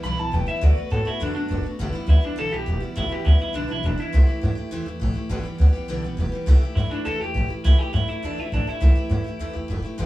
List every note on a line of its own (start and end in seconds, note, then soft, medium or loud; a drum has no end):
0.03 0.17 B1 loud
0.03 0.18 G2 medium
0.03 0.18 D3 medium
0.03 0.18 E3 medium
0.03 0.18 G3 medium
0.03 0.17 B3 medium
0.03 0.16 E4 medium
0.03 0.19 B5 loud
0.17 0.32 B1 loud
0.17 0.30 E3 soft
0.17 0.32 G3 soft
0.17 0.33 B3 medium
0.17 0.32 E4 medium
0.17 0.34 A5 loud
0.32 0.46 E1 medium
0.32 0.47 E3 medium
0.32 0.47 G3 medium
0.32 0.47 B3 medium
0.32 0.45 E4 medium
0.32 0.47 G5 loud
0.47 0.61 E3 medium
0.47 0.62 G3 medium
0.47 0.62 B3 medium
0.47 0.62 E4 medium
0.47 0.64 E5 loud
0.47 muted upright bass stroke medium
0.61 0.75 D2 loud
0.61 0.76 D3 medium
0.61 0.76 F#3 medium
0.61 0.77 A3 medium
0.61 0.76 B3 medium
0.61 0.74 F#4 medium
0.61 0.78 D5 loud
0.75 0.90 A3 soft
0.75 0.91 B3 medium
0.75 0.90 F#4 medium
0.75 0.91 B4 loud
0.75 muted upright bass stroke medium
0.90 1.05 A2 loud
0.90 1.05 F#3 medium
0.90 1.06 A3 medium
0.90 1.07 B3 medium
0.90 1.04 F#4 medium
0.90 1.06 A4 loud
1.05 1.20 A3 soft
1.05 1.21 B3 medium
1.05 1.21 E4 loud
1.05 1.20 F#4 medium
1.05 muted upright bass stroke medium
1.20 1.34 F#2 loud
1.20 1.35 D3 medium
1.20 1.35 F#3 medium
1.20 1.36 A3 medium
1.20 1.35 B3 medium
1.20 1.34 D4 loud
1.20 1.32 F#4 medium
1.33 1.49 F#2 loud
1.33 1.48 A3 soft
1.33 1.50 B3 medium
1.33 1.64 D4 loud
1.33 1.49 F#4 medium
1.48 1.63 F#1 loud
1.48 1.64 F#3 medium
1.48 1.64 A3 medium
1.48 1.64 B3 medium
1.48 1.62 F#4 medium
1.63 1.80 A3 soft
1.63 1.80 B3 medium
1.63 1.78 F#4 medium
1.63 muted upright bass stroke medium
1.79 1.93 G1 medium
1.79 1.94 G2 medium
1.79 1.94 D3 medium
1.79 1.94 E3 medium
1.79 1.94 G3 loud
1.79 1.93 B3 medium
1.79 1.91 E4 loud
1.93 2.05 E3 medium
1.93 2.06 G3 medium
1.93 2.07 B3 medium
1.93 2.08 E4 medium
1.93 muted upright bass stroke medium
2.06 2.21 D2 loud
2.06 2.22 E3 medium
2.06 2.22 G3 medium
2.06 2.21 B3 medium
2.06 2.24 E4 medium
2.06 2.19 E4 medium
2.21 2.36 E3 soft
2.21 2.37 G3 soft
2.21 2.37 B3 medium
2.21 2.37 E4 medium
2.25 2.39 D4 medium
2.36 2.51 B1 loud
2.36 2.51 G2 medium
2.36 2.52 D3 medium
2.36 2.52 E3 medium
2.36 2.52 G3 medium
2.36 2.51 B3 medium
2.36 2.50 E4 medium
2.36 2.53 A4 loud
2.51 2.66 B1 medium
2.51 2.65 E3 soft
2.51 2.66 G3 medium
2.51 2.67 B3 medium
2.51 2.66 E4 soft
2.51 2.79 G4 loud
2.66 2.80 E1 medium
2.66 2.81 E3 medium
2.66 2.82 G3 medium
2.66 2.81 B3 medium
2.66 2.79 E4 medium
2.80 2.95 E3 soft
2.80 2.95 G3 soft
2.80 2.96 B3 medium
2.80 2.96 E4 medium
2.80 muted upright bass stroke medium
2.95 3.10 G1 medium
2.95 3.10 G2 medium
2.95 3.11 D3 medium
2.95 3.11 E3 medium
2.95 3.10 G3 medium
2.95 3.10 B3 medium
2.95 3.12 E4 loud
2.95 3.08 E4 medium
3.09 3.23 E3 soft
3.09 3.25 G3 medium
3.09 3.25 B3 medium
3.09 3.25 E4 medium
3.09 3.27 G4 loud
3.09 muted upright bass stroke medium
3.25 3.39 D2 loud
3.25 3.40 E3 medium
3.25 3.40 G3 medium
3.25 3.38 B3 medium
3.25 3.40 E4 medium
3.25 3.37 E4 medium
3.38 3.53 E3 soft
3.38 3.54 G3 medium
3.38 3.54 B3 medium
3.38 3.54 E4 medium
3.38 3.55 E4 medium
3.53 3.68 B1 loud
3.53 3.69 G2 medium
3.53 3.69 D3 medium
3.53 3.69 E3 medium
3.53 3.69 G3 medium
3.53 3.67 B3 medium
3.53 3.70 D4 loud
3.53 3.67 E4 medium
3.68 3.83 B1 medium
3.68 3.82 E3 soft
3.68 3.83 G3 soft
3.68 3.84 B3 medium
3.68 3.83 E4 medium
3.68 3.85 E4 medium
3.83 3.97 E1 medium
3.83 3.98 E3 medium
3.83 3.99 G3 medium
3.83 3.98 B3 medium
3.83 3.99 D4 medium
3.83 3.96 E4 medium
3.98 4.14 G3 soft
3.98 4.13 B3 medium
3.98 4.13 E4 medium
3.98 4.83 E4 medium
3.98 muted upright bass stroke medium
4.02 4.12 E3 soft
4.12 4.27 C2 loud
4.12 4.28 C3 medium
4.12 4.28 E3 medium
4.12 4.28 A3 medium
4.12 4.27 E4 medium
4.12 4.26 G4 medium
4.27 4.42 A3 soft
4.27 4.42 E4 medium
4.27 4.42 G4 medium
4.27 muted upright bass stroke medium
4.41 4.56 G2 loud
4.41 4.57 E3 medium
4.41 4.57 A3 medium
4.41 4.56 E4 medium
4.41 4.54 G4 medium
4.55 4.71 A3 medium
4.55 4.71 E4 medium
4.55 4.71 G4 medium
4.55 muted upright bass stroke medium
4.71 4.85 E2 loud
4.71 4.86 C3 medium
4.71 4.86 E3 medium
4.71 4.87 A3 loud
4.71 4.87 E4 medium
4.71 4.85 G4 medium
4.86 4.99 E2 medium
4.86 5.00 A3 medium
4.86 5.00 E4 medium
4.86 5.01 G4 medium
5.00 5.14 A1 loud
5.00 5.15 E3 medium
5.00 5.15 A3 medium
5.00 5.14 E4 medium
5.00 5.12 G4 medium
5.14 5.30 A3 medium
5.14 5.30 E4 medium
5.14 5.29 G4 medium
5.14 muted upright bass stroke medium
5.29 5.43 G1 medium
5.29 5.44 G2 medium
5.29 5.45 D3 medium
5.29 5.45 E3 medium
5.29 5.44 G3 loud
5.29 5.44 B3 loud
5.29 5.42 G4 loud
5.43 5.57 E3 medium
5.43 5.58 G3 medium
5.43 5.60 B3 medium
5.43 5.59 G4 medium
5.43 muted upright bass stroke medium
5.58 5.73 D2 loud
5.58 5.74 E3 medium
5.58 5.74 G3 medium
5.58 5.73 B3 medium
5.58 5.71 G4 medium
5.73 5.88 E3 soft
5.73 5.88 G3 medium
5.73 5.89 B3 medium
5.73 5.88 G4 medium
5.88 6.02 B1 loud
5.88 6.03 G2 medium
5.88 6.03 D3 medium
5.88 6.03 E3 medium
5.88 6.04 G3 medium
5.88 6.03 B3 loud
5.88 6.01 G4 loud
6.03 6.16 B1 medium
6.03 6.16 E3 medium
6.03 6.17 G3 medium
6.03 6.18 B3 medium
6.03 6.18 G4 medium
6.17 6.31 E1 medium
6.17 6.32 E3 medium
6.17 6.33 G3 medium
6.17 6.32 B3 medium
6.17 6.31 G4 medium
6.32 6.46 E3 medium
6.32 6.47 G3 medium
6.32 6.48 B3 medium
6.32 6.47 G4 medium
6.32 muted upright bass stroke medium
6.46 6.60 C2 loud
6.46 6.61 C3 medium
6.46 6.62 E3 medium
6.46 6.62 A3 loud
6.46 6.62 E4 loud
6.46 6.61 G4 loud
6.61 6.77 A3 medium
6.61 6.77 E4 medium
6.61 6.76 G4 medium
6.61 muted upright bass stroke medium
6.75 6.89 G2 loud
6.75 6.91 E3 medium
6.75 6.92 A3 medium
6.75 6.91 E4 medium
6.75 6.92 E4 medium
6.80 6.90 G4 medium
6.91 7.05 A3 soft
6.91 7.06 D4 medium
6.91 7.06 E4 soft
6.91 7.05 G4 medium
6.91 muted upright bass stroke medium
7.05 7.19 E2 loud
7.05 7.20 C3 medium
7.05 7.20 E3 medium
7.05 7.21 A3 medium
7.05 7.21 E4 medium
7.05 7.19 G4 medium
7.05 7.20 A4 loud
7.20 7.33 E2 medium
7.20 7.35 A3 soft
7.20 7.35 E4 soft
7.20 7.35 G4 soft
7.20 7.48 G4 loud
7.34 7.48 A1 medium
7.34 7.49 E3 medium
7.34 7.50 A3 medium
7.34 7.49 E4 medium
7.34 7.47 G4 medium
7.48 7.65 A3 soft
7.48 7.64 E4 medium
7.48 7.64 G4 medium
7.48 muted upright bass stroke medium
7.64 7.78 C2 loud
7.64 7.79 C3 medium
7.64 7.79 E3 medium
7.64 7.80 A3 medium
7.64 7.79 E4 loud
7.64 7.79 E4 medium
7.64 7.77 G4 medium
7.78 7.94 E4 medium
7.78 7.93 G4 medium
7.78 7.93 G4 loud
7.82 7.93 A3 soft
7.93 8.07 G2 loud
7.93 8.08 E3 medium
7.93 8.08 A3 medium
7.93 8.08 E4 medium
7.93 8.09 E4 medium
7.93 8.07 G4 medium
8.08 8.23 A3 soft
8.08 8.25 E4 loud
8.08 8.24 E4 soft
8.08 8.23 G4 medium
8.08 muted upright bass stroke medium
8.23 8.36 E2 loud
8.23 8.37 C3 medium
8.23 8.38 E3 medium
8.23 8.38 A3 medium
8.23 8.40 D4 loud
8.23 8.38 E4 medium
8.23 8.37 G4 medium
8.37 8.51 E2 medium
8.37 8.52 A3 soft
8.37 8.53 E4 medium
8.37 8.53 E4 soft
8.37 8.52 G4 medium
8.52 8.65 A1 medium
8.52 8.67 E3 medium
8.52 8.67 A3 medium
8.52 8.68 D4 loud
8.52 8.68 E4 medium
8.52 8.66 G4 medium
8.67 8.81 A3 medium
8.67 9.51 E4 medium
8.67 8.81 E4 medium
8.67 8.82 G4 medium
8.67 muted upright bass stroke medium
8.80 8.95 C2 loud
8.80 8.95 C3 medium
8.80 8.96 E3 medium
8.80 8.96 A3 medium
8.80 8.96 E4 medium
8.80 8.94 G4 medium
8.95 9.10 A3 soft
8.95 9.10 E4 medium
8.95 9.10 G4 medium
8.95 muted upright bass stroke medium
9.09 9.24 G2 loud
9.09 9.25 E3 medium
9.09 9.25 A3 medium
9.09 9.25 E4 medium
9.09 9.23 G4 medium
9.24 9.39 A3 medium
9.24 9.40 E4 medium
9.24 9.39 G4 medium
9.24 muted upright bass stroke medium
9.39 9.53 E2 medium
9.39 9.54 C3 medium
9.39 9.55 E3 medium
9.39 9.55 A3 medium
9.39 9.53 E4 medium
9.39 9.52 G4 medium
9.53 9.68 E2 medium
9.53 9.69 A3 medium
9.53 9.69 E4 medium
9.53 9.68 G4 medium
9.68 9.82 F#1 medium
9.68 9.83 E3 medium
9.68 9.84 A3 medium
9.68 9.83 E4 medium
9.68 9.81 G4 medium
9.82 9.99 A3 medium
9.82 9.99 E4 medium
9.82 9.98 G4 medium
9.82 muted upright bass stroke medium
9.98 10.06 G1 medium
9.98 10.06 G2 medium
9.98 10.06 D3 medium
9.98 10.06 E3 loud
9.98 10.06 G3 medium
9.98 10.06 B3 loud
9.98 10.06 G4 loud